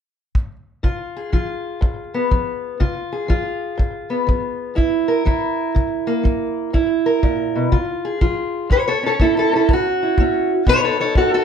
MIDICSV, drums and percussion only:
0, 0, Header, 1, 2, 480
1, 0, Start_track
1, 0, Tempo, 490998
1, 819, Time_signature, 4, 2, 24, 8
1, 11188, End_track
2, 0, Start_track
2, 0, Title_t, "Drums"
2, 342, Note_on_c, 9, 36, 56
2, 440, Note_off_c, 9, 36, 0
2, 821, Note_on_c, 9, 36, 51
2, 919, Note_off_c, 9, 36, 0
2, 1302, Note_on_c, 9, 36, 50
2, 1400, Note_off_c, 9, 36, 0
2, 1782, Note_on_c, 9, 36, 57
2, 1880, Note_off_c, 9, 36, 0
2, 2264, Note_on_c, 9, 36, 56
2, 2362, Note_off_c, 9, 36, 0
2, 2744, Note_on_c, 9, 36, 49
2, 2842, Note_off_c, 9, 36, 0
2, 3226, Note_on_c, 9, 36, 53
2, 3324, Note_off_c, 9, 36, 0
2, 3710, Note_on_c, 9, 36, 51
2, 3807, Note_off_c, 9, 36, 0
2, 4191, Note_on_c, 9, 36, 58
2, 4289, Note_off_c, 9, 36, 0
2, 4673, Note_on_c, 9, 36, 52
2, 4770, Note_off_c, 9, 36, 0
2, 5151, Note_on_c, 9, 36, 54
2, 5249, Note_off_c, 9, 36, 0
2, 5631, Note_on_c, 9, 36, 53
2, 5729, Note_off_c, 9, 36, 0
2, 6111, Note_on_c, 9, 36, 56
2, 6209, Note_off_c, 9, 36, 0
2, 6592, Note_on_c, 9, 36, 50
2, 6689, Note_off_c, 9, 36, 0
2, 7069, Note_on_c, 9, 36, 55
2, 7167, Note_off_c, 9, 36, 0
2, 7550, Note_on_c, 9, 36, 54
2, 7648, Note_off_c, 9, 36, 0
2, 8030, Note_on_c, 9, 36, 57
2, 8128, Note_off_c, 9, 36, 0
2, 8512, Note_on_c, 9, 36, 55
2, 8610, Note_off_c, 9, 36, 0
2, 8991, Note_on_c, 9, 36, 57
2, 9089, Note_off_c, 9, 36, 0
2, 9471, Note_on_c, 9, 36, 62
2, 9569, Note_off_c, 9, 36, 0
2, 9949, Note_on_c, 9, 36, 64
2, 10047, Note_off_c, 9, 36, 0
2, 10428, Note_on_c, 9, 36, 54
2, 10526, Note_off_c, 9, 36, 0
2, 10904, Note_on_c, 9, 36, 58
2, 11002, Note_off_c, 9, 36, 0
2, 11188, End_track
0, 0, End_of_file